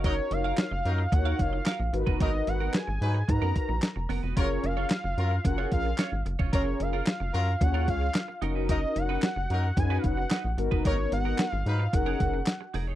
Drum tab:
HH |x-x-x-x-x-x-x-x-|x-x-x-x-x-x-x-o-|x-x-x-x-x-x-x-x-|x-x-x-x-x-x-x-x-|
CP |----x-------x---|----x-------x---|----x-------x---|----x-------x---|
SD |----o-------o---|----o-------o---|----o-------o---|----o-------o---|
BD |o-------o-o----o|o-------o-o-----|o-------o-o----o|o-------o-o-----|

HH |x-x-x-x-x-x-x-x-|x-x-x-x-x-x-x-o-|
CP |----x-------x---|----x-------x---|
SD |----o-------o---|----o-------o---|
BD |o-------o-o----o|o-------o-o-----|